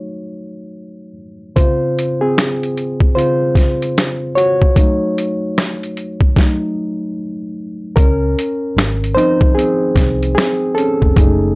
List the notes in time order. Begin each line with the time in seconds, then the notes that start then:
Already playing: F#3 A3 D#4 F#4 C#5
1.55 C#3 C4 F4 C5, kick, closed hi-hat
1.99 closed hi-hat
2.21 C4 G#4
2.38 finger snap, snare, closed hi-hat
2.63 closed hi-hat
2.77 closed hi-hat
3.00 kick
3.15 C#3 C4 F4 C5, closed hi-hat
3.55 kick, snare, closed hi-hat
3.82 closed hi-hat
3.98 finger snap, snare, closed hi-hat
4.35 F#4 C#5, closed hi-hat
4.62 kick
4.76 F#3 A3 D#4, kick, closed hi-hat
5.18 closed hi-hat
5.58 finger snap, snare, closed hi-hat
5.83 closed hi-hat
5.97 closed hi-hat
6.21 kick
6.36 F#3 A3 D#4, kick, snare
7.96 C#2 C#4 A#4, kick, closed hi-hat
8.39 closed hi-hat
8.76 G#1, finger snap, snare, closed hi-hat
9.04 closed hi-hat
9.15 F3 C4 D#4 C5, closed hi-hat
9.41 kick
9.55 C4 G#4
9.59 closed hi-hat
9.96 C2, kick, snare, closed hi-hat
10.23 closed hi-hat
10.35 C4 G#4, finger snap, snare, closed hi-hat
10.75 C#4 A4, closed hi-hat
11.02 F1, kick
11.16 F#1 A3 D#4 G#4, kick, closed hi-hat